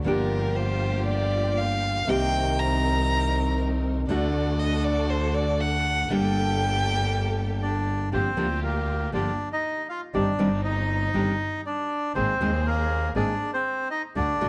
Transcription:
0.04 G1 D3 F3 A#3 D4 F4 G4 A#4
0.56 C5
1.06 D5
1.58 F5
2.07 C2 C3 D#3 A#3 C4 D#4 G4 A#4 G5
2.59 A#5
4.08 D2 D3 A3 D4 F#4 A4 D5
4.59 D#5
4.85 D5
5.10 C5
5.34 D5
5.60 F#5
6.10 G1 D3 G3 A#3 D4 G4 A4 G5
7.62 D4 D5
8.12 G1 D3 F3 A#3 C4 D4 F4 G4 C5
8.37 D2 D3 F3 A#3 D4 F4 G4
8.63 A#3 A#4
9.12 G1 D3 F3 A#3 D4 F4 G4 D5
9.52 D#4 D#5
9.89 F4 F5
10.14 G1 D#3 G3 C4 D4 D#4 G4 D5
10.39 G1 D#3 G3 C4 D4 D#4 G4
10.64 D#4 D#5
11.14 G1 D#3 G3 C4 D4 D#4 G4
11.66 D4 D5
12.15 G#1 D#3 G#3 A#3 C4 G#4 C5
12.40 D#2 D#3 G#3 A#3 C4 G#4
12.66 A#3 A#4
13.15 G#1 D#3 G#3 A#3 C4 D4 G#4 D5
13.53 C4 C5
13.91 D#4 D#5
14.15 D2 D3 A3 D4 F#4 D5
14.40 A1 D3 A3 D4 F#4

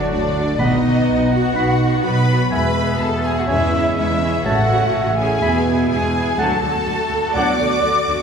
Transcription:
Already playing: A2 F#3 A3 D4 F#4 D5
0.10 D2 A3 D4 D5
0.36 A3 F#4
0.58 B1 B2 B3 D#4 F#4 D#5 F#5 B5
0.84 B3 F#4
1.08 B1
1.30 B3 F#4 F#5
1.55 B1 D#4 F#5 B5
1.81 B3 F#4
2.03 B1 F#3 B4 B5
2.29 B3 F#4
2.51 E2 G#3 B4 E5 G#5 B5
2.77 B3 G#4
2.99 E2 B3 A4 A5
3.22 B3 G#4 G#5
3.35 F#4 F#5
3.46 E2 C#3 C#4 E4 G#4 C#5 E5 G#5
3.74 C#4 G#4
3.94 E2 G#3 E4 E5
3.99 E5
4.22 C#4 G#4
4.43 A1 A3 F#4 C#5 F#5 A5
4.70 C#4 E4
4.93 A1
5.16 C#4 E4 G#4 G#5
5.40 E2 B2 B3 E4 E5 B5
5.66 B3 E4
5.87 E2 G#3 G#4 G#5
6.16 B3 E4
6.37 D2 A2 F#3 D4 F#4 A4 F#5 A5
6.62 D2 D3
6.85 D2 D3 A3
7.09 D2 D3
7.33 D2 A2 F#3 B3 D4 D5 F#5 A5 D6
7.60 D2 D3
7.81 D2 D3 A3
8.08 D2 D3

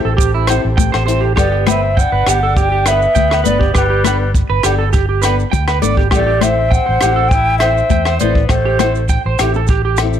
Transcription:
Already playing: C4 G4 A4
0.05 A1 A4
0.17 G4, kick, muted conga, maracas
0.34 E4
0.47 C4 E4 A4 C5, cross-stick, closed hi-hat, low agogo, maracas
0.65 A1
0.77 G5, kick, high conga, maracas
0.92 A1 C5, cross-stick, low agogo
1.06 C4 E4 A4 C5, closed hi-hat, muted conga, maracas
1.21 G4
1.35 G1 G3 B3 D4 G4 A4 D5, kick, cross-stick, muted conga, low agogo, maracas
1.40 B3
1.52 G4
1.66 B3 A4 B4 E5, cross-stick, closed hi-hat, high conga, low agogo, maracas
1.71 C4
1.97 F#5 G5, kick, maracas
2.01 D4
2.12 G1 B4
2.27 G1 B3 D4 G4, muted steel-string acoustic guitar stroke, cross-stick, closed hi-hat, low agogo, maracas
2.43 A4
2.57 G4 G5, kick, muted conga, maracas
2.61 D4
2.72 G4
2.86 B3 D4 A4 B4 E5, cross-stick, closed hi-hat, muted conga, low agogo, maracas
2.91 B3
3.02 maracas
3.15 D2 G5, kick, high conga, maracas
3.30 B4, cross-stick, low agogo
3.44 G1 B3 D4 A4 B4 D5, closed hi-hat, muted conga, high conga, maracas
3.50 B3
3.59 G4, kick
3.74 G1 G4 B4, kick, cross-stick, maracas
3.78 G3, low agogo
3.90 G4
4.04 B3 D4 A4 B4, cross-stick, closed hi-hat, high conga, low agogo, maracas
4.35 kick, maracas
4.50 G1 B4
4.63 G1 D4 G4 A4, cross-stick, closed hi-hat, low agogo, maracas
4.67 B3
4.79 A4
4.93 G4, kick, muted conga, maracas
5.09 G4
5.22 A4 B4, cross-stick, closed hi-hat, muted conga, low agogo, maracas
5.26 B3 D4
5.39 maracas
5.52 D2 G5, kick, high conga, maracas
5.68 B4, cross-stick, low agogo
5.82 G#1 B3 D4 A4 D5, closed hi-hat, muted conga, high conga, maracas
5.97 G4, kick
6.11 A1 G3 C4 E4 G4 A4, kick, cross-stick, low agogo, maracas
6.15 A3 D5
6.27 G4
6.41 E4 A4 C5 E5, cross-stick, closed hi-hat, high conga, low agogo, maracas
6.45 C4
6.71 C4 F#5 G5, kick, maracas
6.86 A1 C5
7.01 A1 E4 G4 A4, cross-stick, closed hi-hat, low agogo, maracas
7.05 C4
7.16 A4
7.29 G5, muted clean electric guitar stroke, kick, muted conga, maracas
7.34 E4
7.58 C5 E5, cross-stick, closed hi-hat, muted conga, low agogo
7.62 C4 E4 A4
7.77 maracas
7.90 E2 G5, kick, high conga, maracas
8.05 C5, cross-stick, low agogo
8.19 A1 B3 E4 A4 C5 D5, closed hi-hat, muted conga, high conga, maracas
8.24 C4
8.35 kick
8.48 A1 A3 C5, muted clean electric guitar stroke, kick, cross-stick, muted conga, low agogo, maracas
8.65 G4
8.79 A4 C5, cross-stick, closed hi-hat, high conga, low agogo, maracas
8.83 C4 E4
8.95 maracas
9.09 G5, kick, maracas
9.25 A1 C5
9.39 A1 C4 E4 G4 A4, cross-stick, closed hi-hat, low agogo, maracas
9.54 A4, maracas
9.67 G4, kick, muted conga, maracas
9.85 G4
9.97 muted clean electric guitar stroke, cross-stick, closed hi-hat, muted conga, low agogo, maracas
10.01 C4 E4 A4
10.13 maracas

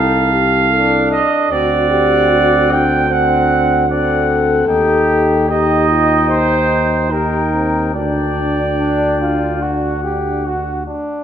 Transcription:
Already playing: C2 D#4 A4 F5 A5
0.32 G4
0.71 D4 A4
1.12 D#5
1.50 D2 C4 F#4 D5 F#5
1.90 G4
2.30 F#4
2.71 D4 G5
3.08 C4 F#5
3.88 C4 A4 D5 F#5
4.67 D#2 D#4 G4 G5
5.49 D#4 G4 D#5 G5
5.90 F4
6.29 D#4 C5
7.10 D#4 G4 A#4 G5
7.53 C4
7.94 D2 D4 D5 G5
8.80 D4
9.21 F4
9.62 F#4 F#5
10.04 G4
10.46 F#4
10.87 D4

